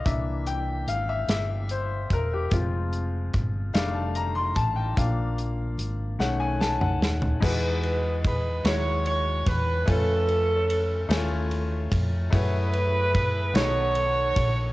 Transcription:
<<
  \new Staff \with { instrumentName = "Saxophone section" } { \time 6/8 \key c \minor \tempo 4. = 49 << { r2. | r2. | r2. | \key e \major b'4 b'8 cis''8 cis''8 b'8 |
a'2 r4 | b'4. cis''4. | } \\ { r2. | r2. | r2. | <dis' gis'>4. r4. |
cis'2 r4 | <e' gis'>4. <fis' a'>4. | } >> }
  \new Staff \with { instrumentName = "Upright piano" } { \time 6/8 \key c \minor e''8 g''8 f''16 e''16 e''8 c''8 bes'16 g'16 | f'8 r4 f''16 a''16 bes''16 c'''16 a''16 g''16 | f''4 r8 fis''16 aes''16 a''16 fis''8 r16 | \key e \major <gis dis' fis' gis' b'>4~ <gis dis' fis' gis' b'>16 r16 <fis gis dis' e' fis' cis''>4~ <fis gis dis' e' fis' cis''>16 r16 |
<a cis' eis' b' gis''>4~ <a cis' eis' b' gis''>16 r16 <a cis' e' eis' cis'' gis''>4~ <a cis' e' eis' cis'' gis''>16 r16 | <a e' fis' gis' cis''>4~ <a e' fis' gis' cis''>16 r16 <b dis' fis' a' dis''>4~ <b dis' fis' a' dis''>16 r16 | }
  \new Staff \with { instrumentName = "Upright piano" } { \clef bass \time 6/8 \key c \minor <e bes d'>2. | <f aes c'>4. <ees g a d'>4. | <f bes d'>4. <dis a cis'>4. | \key e \major e4. r4. |
r2. | r4. dis4. | }
  \new Staff \with { instrumentName = "Fingered electric bass" } { \clef bass \time 6/8 \key c \minor c,4 aes,,8 g,,4 e,,8 | f,,4 g,,8 f,,4 a,,8 | bes,,4 aes,,8 b,,4 dis,8 | \key e \major e,4. dis,4 e,8 |
eis,4. dis,4 eis,8 | fis,4. b,,4 ais,,8 | }
  \new DrumStaff \with { instrumentName = "Drums" } \drummode { \time 6/8 <hh bd>8 hh8 hh8 <hh sn>8 hh8 <hh bd>8 | <hh bd>8 hh8 <hh bd>8 <hh sn>8 hh8 <hh bd>8 | <hh bd>8 hh8 hh8 sn8 sn16 toml16 sn16 tomfh16 | <cymc bd>8 cymr8 <bd cymr>8 <cymr sn>8 cymr8 <bd cymr>8 |
<bd cymr>8 cymr8 cymr8 <cymr sn>8 cymr8 <bd cymr>8 | <bd cymr>8 cymr8 <bd cymr>8 <cymr sn>8 cymr8 <bd cymr>8 | }
>>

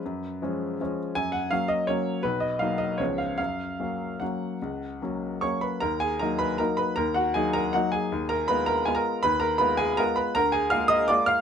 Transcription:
<<
  \new Staff \with { instrumentName = "Upright piano" } { \time 3/4 \key fis \major \tempo 4 = 158 b'2~ b'8 r8 | gis''8 fis''8 eis''8 dis''8 cis''4 | b'8 dis''8 eis''8 dis''8 cis''8 eis''8 | eis''2 fis''4~ |
fis''2 <cis'' cis'''>8 <b' b''>8 | \key ees \minor <bes' bes''>8 <aes' aes''>8 <bes' bes''>8 <ces'' ces'''>8 <bes' bes''>8 <ces'' ces'''>8 | <bes' bes''>8 <ges' ges''>8 <aes' aes''>8 <bes' bes''>8 <ges' ges''>8 <aes' aes''>8~ | <aes' aes''>8 <bes' bes''>8 <ces'' ces'''>8 <bes' bes''>8 aes''16 <bes' bes''>8. |
<ces'' ces'''>8 <bes' bes''>8 <ces'' ces'''>8 <aes' aes''>8 <bes' bes''>8 <ces'' ces'''>8 | <bes' bes''>8 <aes' aes''>8 <f'' f'''>8 <ees'' ees'''>8 <d'' d'''>8 <f'' f'''>8 | }
  \new Staff \with { instrumentName = "Upright piano" } { \time 3/4 \key fis \major fis,4 <eis gis cis'>4 <eis gis cis'>4 | fis,4 <fis ais cis'>4 <fis ais cis'>4 | b,,4 <fis ais dis'>4 <cis, eis b cis'>4 | fis,4 <fis ais cis'>4 <fis ais cis'>4 |
cis,4 <fis ais cis'>4 <fis ais cis'>4 | \key ees \minor ees,4 <ges bes ees'>4 <ges bes ees'>4 | ees,4 <ges bes ees'>4 <ges bes ees'>4 | ees,4 <aes ces' f'>4 <aes ces' f'>4 |
ees,4 <aes ces' f'>4 <aes ces' f'>4 | d,4 <aes bes f'>4 <aes bes f'>4 | }
>>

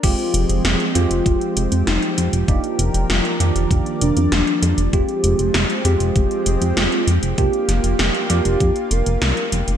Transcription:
<<
  \new Staff \with { instrumentName = "Soft synth lead" } { \time 4/4 \key f \dorian \tempo 4 = 98 f'4. f'4. ees'8 r8 | f'8 r8 f'4. d'4. | g'4. g'4. f'8 r8 | g'8 r8 g'4. bes'4. | }
  \new Staff \with { instrumentName = "Tine electric piano" } { \time 4/4 \key f \dorian <aes c' f' g'>4. <aes c' f' g'>2~ <aes c' f' g'>8 | <bes d' ees' g'>4. <ees bes d' g'>2~ <ees bes d' g'>8 | <aes c' f' g'>4. <aes c' f' g'>2~ <aes c' f' g'>8 | <bes d' f' g'>4. <bes d' f' g'>2~ <bes d' f' g'>8 | }
  \new Staff \with { instrumentName = "Analog synth pad" } { \time 4/4 \key f \dorian << { <f g'>1~ | <f g'>1 | <f g'>1 | f'1 | } \\ { <aes c'>1 | <bes' d''>1 | <aes c'>1 | bes1 | } >> }
  \new Staff \with { instrumentName = "Analog synth bass" } { \clef bass \time 4/4 \key f \dorian f,,16 r16 f,,16 f,,16 f,,16 r16 f,16 f,,16 f,,16 r16 f,,16 f,16 f,,16 r16 f,16 f,,16 | f,,16 r16 f,,16 f,,16 f,,16 r16 f,16 f,,16 f,,16 r16 f,,16 f,16 f,,16 r16 f,16 f,,16 | f,,16 r16 f,,16 f,,16 f,,16 r16 f,16 f,,16 f,,16 r16 f,,16 f,16 f,,16 r16 f,16 f,,16 | f,,16 r16 f,,16 f,,16 f,,16 r16 f,16 f,,16 f,16 r16 f,,16 f,,16 c,16 r16 f,,16 f,,16 | }
  \new DrumStaff \with { instrumentName = "Drums" } \drummode { \time 4/4 <cymc hh bd>16 hh16 hh16 hh16 <hh sn>16 hh16 hh16 hh16 <hh bd>16 hh16 hh16 hh16 <hh sn>16 hh16 hh16 hh16 | <hh bd>16 hh16 hh16 hh16 <hh sn>16 hh16 hh16 hh16 <hh bd>16 hh16 hh16 hh16 <hh sn>16 hh16 hh16 hh16 | <hh bd>16 hh16 hh16 hh16 <hh sn>16 hh16 hh16 hh16 <hh bd>16 hh16 hh16 hh16 <hh sn>16 hh16 hh16 hh16 | <hh bd>16 hh16 <hh sn>16 hh16 <hh sn>16 hh16 hh16 hh16 <hh bd>16 hh16 hh16 hh16 <hh sn>16 hh16 hh16 hh16 | }
>>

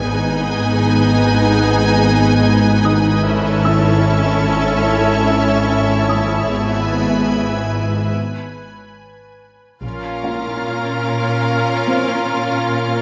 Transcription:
<<
  \new Staff \with { instrumentName = "Ambient pad" } { \time 4/4 \tempo 4 = 74 <ees' ces'' aes''>1 | <cis'' a''>1 | <b' gis''>2 r2 | <bes' f''>1 | }
  \new Staff \with { instrumentName = "Felt piano" } { \time 4/4 d''4. r2 <ees' ees'''>8~ | <ees' ees'''>8 <e' e'''>2. ees'''8~ | ees'''2 r2 | r8 <f' f''>2 <c' c''>4. | }
  \new Staff \with { instrumentName = "Violin section" } { \time 4/4 << { aes''1 | e''1~ | e''2 r2 | f''1 | } \\ { aes'1 | a'1 | gis'2 r2 | bes'1 | } >> }
  \new Staff \with { instrumentName = "Viola section" } { \time 4/4 << { ees'1 | e'1~ | e'2 r2 | f'1 | } \\ { ces'1 | cis'1 | b2 r2 | des'1 | } >> }
  \new Staff \with { instrumentName = "Cello section" } { \clef bass \time 4/4 aes,1~ | aes,1 | gis,2 r2 | bes,1 | }
  \new Staff \with { instrumentName = "Double bass section" } { \clef bass \time 4/4 aes,,1~ | aes,,1 | gis,,2 r2 | bes,,4 r2. | }
>>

